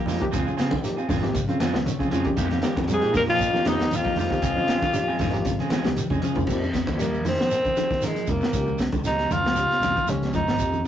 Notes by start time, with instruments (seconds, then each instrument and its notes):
Already playing: clean electric guitar F3
0.06 fingered electric bass F3, clean electric guitar G#3 A#3 D#4 G4, open hi-hat, high conga, low conga, shekere
0.21 clean electric guitar D#3, reed electric piano F3 A#3 D#4 G4, kick, closed hi-hat, shekere
0.31 fingered electric bass C#2, clean electric guitar C#3 F3 C4 F4 G#4, kick, closed hi-hat, low conga, shekere
0.45 fingered electric bass C#3, clean electric guitar F3 F4 G#4, shekere
0.57 clean electric guitar C#3 F3 C4 F4 G#4, snare, closed hi-hat, shekere
0.71 kick, high conga, shekere
0.83 reed electric piano F3 A#3 D#4 G4, closed hi-hat, shekere
0.97 clean electric guitar C4 F4 G#4, shekere
1.09 fingered electric bass G#1, clean electric guitar D#3 F3 C4 F4 G#4, reed electric piano G#5, kick, open hi-hat, high conga, low conga, shekere
1.22 clean electric guitar F3, reed electric piano F3 A#3 D#4 G4, snare, closed hi-hat, shekere
1.34 fingered electric bass G#1, clean electric guitar C#3, reed electric piano F5, kick, closed hi-hat, shekere
1.48 fingered electric bass C#3, clean electric guitar C4 F4, muted clean electric guitar stroke, closed hi-hat, high conga, shekere
1.60 clean electric guitar D#3 F3 C4 F4 G#4, muted fingered electric bass stroke, snare, closed hi-hat, high conga, low conga, shekere
1.72 fingered electric bass C#2, clean electric guitar D#3, reed electric piano F3 A#3 D#4 F4, snare, closed hi-hat, shekere
1.84 clean electric guitar C#3, reed electric piano C#5, closed hi-hat, high conga, shekere
1.99 fingered electric bass C#3, clean electric guitar C4 F4 G#4, kick, closed hi-hat, shekere
2.11 fingered electric bass C#3, clean electric guitar F3 C4 F4 G#4, closed hi-hat, high conga, low conga, shekere
2.23 clean electric guitar D#3, reed electric piano F3 A#3 D#4 G4, kick, closed hi-hat, shekere
2.36 fingered electric bass F2, clean electric guitar G#3 A#3 D#4 G4, kick, snare, closed hi-hat, low conga, shekere
2.50 clean electric guitar A#3 D#4 G4, snare, closed hi-hat, high conga, shekere
2.61 clean electric guitar D#3 G#3 A#3 G4, reed electric piano F3 A#3 D#4 G4, muted clean electric guitar stroke, snare, closed hi-hat, shekere
2.77 fingered electric bass F2, kick, snare, high conga, shekere
2.88 trombone section G#2, clean electric guitar G3, closed hi-hat, shekere
2.93 alto saxophone G#4
2.99 fingered electric bass A#2, reed electric piano F3 A#3 D#4 G4, clean electric guitar D#4 G4, muted clean electric guitar stroke, closed hi-hat
3.04 shekere
3.12 trombone section A#2, clean electric guitar G#3 A#3 D#4 G4, kick, snare, open hi-hat, high conga, low conga, shekere
3.17 alto saxophone A#4
3.27 trombone section F2, clean electric guitar F3, alto saxophone F4, shekere
3.39 kick, closed hi-hat, shekere
3.53 fingered electric bass F3, clean electric guitar A#3 D#4 G4, snare, high conga, shekere
3.63 trombone section D#2, clean electric guitar D#3 G#3 A#3 D#4 G4, reed electric piano F3 A#3 D#4 G4, snare, closed hi-hat, high conga, low conga
3.67 alto saxophone D#4, shekere
3.79 fingered electric bass D#2, snare, closed hi-hat, shekere
3.91 trombone section F2, closed hi-hat, high conga, shekere
3.96 alto saxophone F4
4.04 clean electric guitar F3 A#3 D#4 G4, kick, closed hi-hat, shekere
4.16 trombone section F2, fingered electric bass F3, clean electric guitar G#3 A#3 D#4 G4, open hi-hat, low conga, shekere
4.20 alto saxophone F4
4.30 clean electric guitar D#3, reed electric piano F3 A#3 D#4 G4, kick, snare, closed hi-hat, shekere
4.41 fingered electric bass C#2, clean electric guitar C#3 F3 C4 G#4, muted clean electric guitar stroke, kick, closed hi-hat, shekere
4.55 fingered electric bass C#3, clean electric guitar F3 G#3 C4 G#4, high conga, shekere
4.67 clean electric guitar C#3 F3 G#3 C4 G#4, snare, closed hi-hat, shekere
4.82 kick, high conga, shekere
4.92 reed electric piano F3 A#3 D#4 G4, closed hi-hat, high conga, shekere
5.07 clean electric guitar G#3 C4 G#4, shekere
5.19 fingered electric bass G#1, clean electric guitar D#3 F3 G#3 C4 G#4, kick, open hi-hat, high conga, low conga, shekere
5.31 reed electric piano F3 A#3 D#4 G4, clean electric guitar F3, closed hi-hat
5.35 shekere
5.45 fingered electric bass G#1, clean electric guitar C#3, kick, closed hi-hat, shekere
5.59 fingered electric bass C#3, clean electric guitar G#3 C4 G#4, closed hi-hat, high conga, shekere
5.70 clean electric guitar D#3 F3 G#3 C4 G#4, muted fingered electric bass stroke, snare, closed hi-hat, high conga, shekere
5.84 fingered electric bass C#2, clean electric guitar D#3, reed electric piano F3 A#3 D#4 G4, snare, closed hi-hat, high conga, shekere
5.96 clean electric guitar C#3, closed hi-hat, high conga, shekere
6.10 fingered electric bass C#3, clean electric guitar G#3 C4 G#4, kick, closed hi-hat, low conga, shekere
6.22 fingered electric bass C#3, clean electric guitar F3 G#4, muted clean electric guitar stroke, closed hi-hat, shekere
6.34 clean electric guitar D#3, reed electric piano F3 A#3 D#4 F4, kick, closed hi-hat, low conga
6.39 shekere
6.47 fingered electric bass F2, reed electric piano F3 A#3 D#4 G4, kick, crash, low conga, shekere
6.62 high conga, shekere
6.73 clean electric guitar D#3, kick, snare, closed hi-hat, shekere
6.87 fingered electric bass D#2, kick, closed hi-hat, high conga, shekere
6.96 reed electric piano F3 A#3 D#4 G4, clean electric guitar G3, closed hi-hat
7.00 tenor saxophone A#3, high conga, shekere
7.13 shekere
7.25 fingered electric bass D#3, tenor saxophone C4, open hi-hat, high conga, low conga, shekere
7.39 clean electric guitar F3, snare, shekere
7.50 reed electric piano F3 A#3 D#4 A#4, snare, closed hi-hat, shekere
7.65 kick, closed hi-hat, high conga, shekere
7.76 clean electric guitar D#3, closed hi-hat, high conga, shekere
7.90 fingered electric bass D#3, kick, snare, shekere
8.02 reed electric piano F3 A#3 D#4 A#4, tenor saxophone G#3, closed hi-hat, high conga, shekere
8.15 clean electric guitar F3, closed hi-hat, shekere
8.27 fingered electric bass C2, tenor saxophone A#3, kick, closed hi-hat, low conga, shekere
8.41 clean electric guitar D#3, snare, shekere
8.52 fingered electric bass C#2, clean electric guitar C#3, reed electric piano F3 A#3 D#4 G4, kick, closed hi-hat, shekere
8.67 clean electric guitar F3, high conga, shekere
8.78 clean electric guitar C#3, kick, snare, closed hi-hat, shekere
8.93 fingered electric bass C#2, kick, closed hi-hat, high conga, shekere
9.04 reed electric piano F3 A#3 D#4 G4, tenor saxophone D#4, snare, closed hi-hat, high conga, shekere
9.19 snare, closed hi-hat, shekere
9.30 fingered electric bass C#2, clean electric guitar D#3, tenor saxophone F4, closed hi-hat, high conga, low conga, shekere
9.44 clean electric guitar F3, snare, shekere
9.56 clean electric guitar C#3, reed electric piano F3 A#3 D#4 G4, closed hi-hat, shekere
9.71 snare, closed hi-hat, shekere
9.80 fingered electric bass C2, clean electric guitar D#3, snare, closed hi-hat, high conga, low conga, shekere
9.96 clean electric guitar D#3, kick, closed hi-hat, shekere
10.07 fingered electric bass C#2, clean electric guitar C#3, reed electric piano F3 A#3 D#4 G4, tenor saxophone C#4, closed hi-hat, high conga, shekere
10.22 snare, closed hi-hat, shekere
10.33 clean electric guitar F3, tenor saxophone D#4, kick, closed hi-hat, high conga, low conga, shekere
10.46 fingered electric bass G#1, clean electric guitar D#3, snare, shekere
10.59 fingered electric bass F2, reed electric piano F3 A#3 D#4 G4, kick, closed hi-hat, shekere
10.72 high conga, shekere